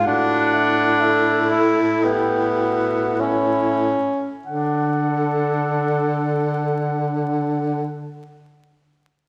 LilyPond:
<<
  \new Staff \with { instrumentName = "Clarinet" } { \time 4/4 \key d \major \tempo 4 = 50 fis''4 e''4 e''4 cis''8 r8 | fis''1 | }
  \new Staff \with { instrumentName = "Alto saxophone" } { \time 4/4 \key d \major fis'8 e'8 a'4 g'8 fis'8 e'8 r8 | a'1 | }
  \new Staff \with { instrumentName = "Tenor saxophone" } { \time 4/4 \key d \major d'4. e'8 b4 cis'4 | d'1 | }
  \new Staff \with { instrumentName = "Baritone saxophone" } { \clef bass \time 4/4 \key d \major a,2.~ a,8 r8 | d1 | }
>>